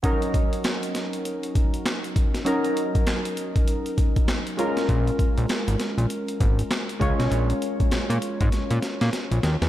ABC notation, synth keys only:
X:1
M:4/4
L:1/8
Q:"Swing 16ths" 1/4=99
K:Ebdor
V:1 name="Synth keys"
[G,DEB]8 | [G,DEB]6- [G,DEB] [A,DFB]- | [A,DFB]6- [A,DFB] [A,DFd]- | [A,DFd]6- [A,DFd] z |]